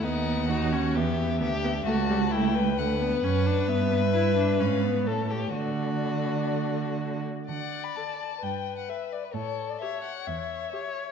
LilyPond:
<<
  \new Staff \with { instrumentName = "Violin" } { \time 4/4 \key d \major \tempo 4 = 131 fis''2 e''2 | a''4 g''4 fis''4 fis''4 | e''2 eis''4 cis''4 | d''2.~ d''8 r8 |
fis''8. b''16 a''8 a''8 g''8. fis''16 e''8 d''16 b'16 | cis''8. d''16 e''8 fis''8 e''4. r8 | }
  \new Staff \with { instrumentName = "Violin" } { \time 4/4 \key d \major dis'4 fis'4 g'4 g'4 | fis'4 e'8 b'2~ b'8~ | b'2. a'8 g'8 | fis'2.~ fis'8 r8 |
d''2 b'2 | a'4 cis''2 cis''4 | }
  \new Staff \with { instrumentName = "Viola" } { \time 4/4 \key d \major b4 dis'8 cis'8 b4 b8 b8 | a8 g8 a4 a8 b8 cis'8 d'8 | b8 b8 e'8 d'8 cis'8 b8 a4 | a2.~ a8 r8 |
r4 a'4 r4 b'4 | r4 g'4 r4 g'4 | }
  \new Staff \with { instrumentName = "Cello" } { \clef bass \time 4/4 \key d \major dis,2 e,4 d,4 | cis,2 d,4 fis,4 | g,2 gis,4 a,4 | d2.~ d8 r8 |
d4 r4 g,4 r4 | a,4 r4 e,4 r4 | }
>>